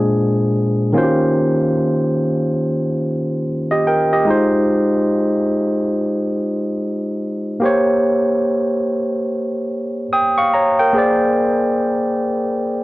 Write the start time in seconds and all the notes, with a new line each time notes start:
Already playing: A#2 G#3 D4 G#4
0.93 D#3 A#3 C#4 F4
0.97 F#4 C5
1.03 G4
3.71 G4 D#5
3.87 A#4 G5
4.13 G4 D#5
4.25 G#3 D#4 F4
4.31 C5
7.60 A#3 G4 C5
7.65 C#5
10.13 G5 D#6
10.38 F5 C#6
10.54 C#5 A#5
10.79 A#4 G5
10.93 A#3 G#4 C5
10.98 D5